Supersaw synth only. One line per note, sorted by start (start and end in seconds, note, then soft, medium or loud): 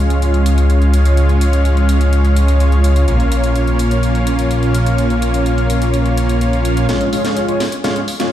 0.00 3.05 G#3 medium
0.00 3.05 C#4 medium
0.00 3.05 F4 medium
0.00 3.05 C#5 medium
0.00 3.05 F5 medium
3.08 6.86 A#3 medium
3.08 6.86 C#4 medium
3.08 6.86 F4 medium
3.08 6.86 C#5 medium
3.08 6.86 F5 medium
6.89 7.09 G#3 medium
6.89 7.09 C#4 medium
6.89 7.09 F4 medium
6.89 7.09 C#5 medium
6.89 7.09 F5 medium
7.13 7.46 G#3 medium
7.13 7.46 C#4 medium
7.13 7.46 F4 medium
7.13 7.46 C#5 medium
7.13 7.46 F5 loud
7.48 7.65 G#3 medium
7.48 7.65 C#4 medium
7.48 7.65 F4 medium
7.48 7.65 C#5 medium
7.48 7.65 G#5 medium
7.84 8.00 G#3 medium
7.84 8.00 C#4 medium
7.84 8.00 F4 medium
7.84 8.00 C#5 medium
7.84 8.00 F5 loud
8.20 8.32 G#3 medium
8.20 8.32 C#4 medium
8.20 8.32 F4 medium
8.20 8.32 C#5 medium
8.20 8.32 F5 medium